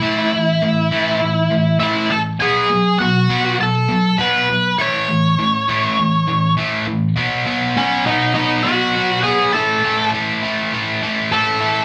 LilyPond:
<<
  \new Staff \with { instrumentName = "Lead electric guitar" } { \time 4/4 \key b \mixolydian \tempo 4 = 101 <e' e''>2. <e' e''>8 <a' a''>8 | <gis' gis''>4 <fis' fis''>4 <a' a''>4 <b' b''>4 | <cis'' cis'''>2. r4 | r4 <cis' cis''>8 <dis' dis''>8 <dis' dis''>8 <fis' fis''>4 <gis' gis''>8 |
<a' a''>4 r2 <a' a''>4 | }
  \new Staff \with { instrumentName = "Distorted electric guitar" } { \clef bass \time 4/4 \key b \mixolydian <a, e a>8 <a, e>8 <a, e>8 <a, e a>8 <a, e>8 <a, e>8 <a, e a>8 <a, e>8 | <b, fis b>8 <b, fis>8 <b, fis>8 <b, fis b>8 <b, fis>8 <b, fis>8 <b, fis b>8 <b, fis>8 | <a, e a>8 <a, e>8 <a, e>8 <a, e a>8 <a, e>8 <a, e>8 <a, e a>8 <a, e>8 | <b, fis b>8 <b, fis b>8 <b, fis b>8 <b, fis b>8 <b, fis b>8 <b, fis b>8 <b, fis b>8 <b, fis b>8 |
<a, e a>8 <a, e a>8 <a, e a>8 <a, e a>8 <a, e a>8 <a, e a>8 <a, e a>8 <a, e a>8 | }
>>